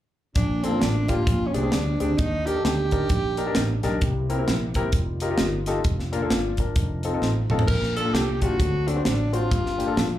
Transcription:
0.35 fingered electric bass A#1, grand piano A#2, french horn section F3 A3 A#3 D4, tenor saxophone D4, kick, closed hi-hat
0.63 grand piano A#3 D4 F4 A4, tenor saxophone C4, closed hi-hat
0.72 grand piano A#3 D4 F4 A4
0.80 fingered electric bass A1, tenor saxophone D4, snare, closed hi-hat
1.08 grand piano A#3 D4 F4 G4, tenor saxophone F4, kick, closed hi-hat
1.27 fingered electric bass A#1, grand piano A#2, french horn section G3 G#3 C4, kick, closed hi-hat
1.47 tenor saxophone C#4
1.53 fingered electric bass C2, grand piano C4 D4 G4 G#4, tenor saxophone D4, closed hi-hat
1.63 grand piano C4 D4 G4 G#4
1.72 fingered electric bass D2, snare, closed hi-hat
2.00 fingered electric bass D2, grand piano C4 D4 G4 G#4, tenor saxophone D4, closed hi-hat
2.18 fingered electric bass D#2, grand piano D#3, french horn section A#3 D#4, tenor saxophone D#4, kick, closed hi-hat
2.46 grand piano D4 D#4 G4 A#4, tenor saxophone G4, closed hi-hat
2.56 grand piano D4 D#4 G4 A4
2.65 fingered electric bass D2, tenor saxophone G4, snare, closed hi-hat
2.91 grand piano D4 D#4 G4 A#4, kick, closed hi-hat
3.09 fingered electric bass A#1, kick, closed hi-hat
3.37 grand piano D4 D#4 G4 A#4, closed hi-hat
3.46 grand piano D4 D#4 G4 A#4
3.55 fingered electric bass A1, snare, closed hi-hat
3.83 fingered electric bass B1, grand piano D4 D#4 G4 A#4, snare, closed hi-hat
4.01 fingered electric bass C2, grand piano C3, french horn section C4 E4, kick, closed hi-hat
4.29 grand piano C4 E4 G4 A#4, closed hi-hat
4.38 grand piano C4 E4 G4 A#4
4.48 fingered electric bass A#1, snare, closed hi-hat
4.74 grand piano C4 E4 G4 A#4, kick, closed hi-hat
4.92 fingered electric bass F1, french horn section A#3 D#4 F4, kick, closed hi-hat
5.20 grand piano D#4 F4 G4 A#4, closed hi-hat
5.31 grand piano D#4 F4 G4 A#4
5.38 fingered electric bass G1, snare, closed hi-hat
5.66 grand piano D#4 F4 G4 A4, snare, closed hi-hat
5.84 fingered electric bass F1, french horn section F3 D4, kick, closed hi-hat
5.99 snare
6.12 grand piano A#3 D4 F4 A#4, closed hi-hat
6.22 grand piano A#3 D4 F4 A4
6.30 fingered electric bass G1, grand piano F4 D5, snare, closed hi-hat
6.57 grand piano D4 A#4, kick, closed hi-hat
6.76 fingered electric bass F1, french horn section A3 C4 D#4, kick, closed hi-hat
7.03 grand piano C4 D#4 F4 A4, closed hi-hat
7.14 grand piano C4 D#4 F4 A4
7.22 fingered electric bass A1, snare
7.50 fingered electric bass A1, grand piano C4 D#4 F4 A4, mid tom
7.59 floor tom
7.67 fingered electric bass A#1, grand piano A#2, french horn section A#3 D4, tenor saxophone A#4, kick, crash
7.83 snare
7.96 grand piano A#3 D4 F4 A4, tenor saxophone A4, closed hi-hat
8.05 grand piano A#3 D4 F4 A4
8.14 fingered electric bass C2, tenor saxophone G4, snare, closed hi-hat
8.33 tenor saxophone G4
8.41 grand piano A#3 D4 F4 G4, tenor saxophone F#4, kick, closed hi-hat
8.60 fingered electric bass D2, grand piano D3, french horn section F#3 C4 D4, kick, closed hi-hat
8.87 grand piano C4 D4 F#4 A4, tenor saxophone D4, closed hi-hat
8.96 grand piano C4 D4 F#4 C5
9.05 fingered electric bass A1, tenor saxophone D4, snare, closed hi-hat
9.33 grand piano C4 D4 F#4 C5, tenor saxophone F4, closed hi-hat
9.51 fingered electric bass G1, grand piano G2, french horn section G3 A#3 F4, kick, closed hi-hat
9.66 snare
9.78 grand piano A#3 D4 F4 G4, closed hi-hat
9.87 grand piano A#3 D4 F4 A4
9.97 fingered electric bass A#1, snare, closed hi-hat

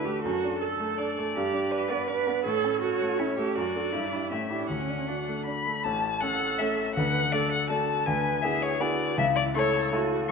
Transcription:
Already playing: grand piano D2 A3 D4 F#4, violin B4
0.05 grand piano A3, cello G4
0.23 grand piano F#2, cello F#4, violin A4
0.44 grand piano D4
0.60 cello A4, grand piano A4
0.80 grand piano A3
0.98 grand piano D4, violin D5
1.18 grand piano A3
1.35 grand piano G2, cello G4
1.53 grand piano D4
1.71 violin B4, grand piano D5
1.90 grand piano B3, cello D5
2.07 grand piano D4, cello B4, violin D5
2.27 grand piano B3
2.45 grand piano A2, cello A4, violin C#5
2.64 grand piano C#4
2.82 cello F#4, grand piano A4, violin C#5
3.01 grand piano A3
3.19 grand piano C#4, cello E4
3.38 grand piano A3, cello G4
3.55 grand piano F#2, cello F#4, violin D5
3.76 grand piano D4 A4
3.93 grand piano G2, cello E4
4.10 cello D4, grand piano E4 G4
4.30 grand piano A2, cello C#4, violin E5
4.50 cello D4, grand piano E4 G4
4.68 grand piano D2, cello C#4, violin F#5
4.89 grand piano D4
5.08 cello D4, grand piano F#4
5.28 grand piano A3
5.45 grand piano D4, violin B5
5.66 grand piano A3
5.84 grand piano A1 A2, violin A5
6.20 grand piano A3 C#4 A4, cello A4, violin F#5
6.58 grand piano A3 C#4 A4, violin E5
6.95 grand piano D2 D3, cello B4, violin F#5
7.33 grand piano A3 D4 A4, cello A4, violin D5
7.52 violin F#5
7.69 grand piano A3 D4 A4, cello F#4, violin A5
8.06 grand piano D2 D3, cello B4, violin G#5
8.42 grand piano B3 E4 G#4, cello G#4, violin E5
8.62 violin C#5
8.80 grand piano B3 E4 G#4, cello F#4, violin D5
9.16 grand piano C#2 C#3, cello E4, violin E5
9.36 violin D5
9.55 grand piano A3 E4 A4, cello A4, violin C#5
9.92 grand piano A3 E4 A4, cello F#4

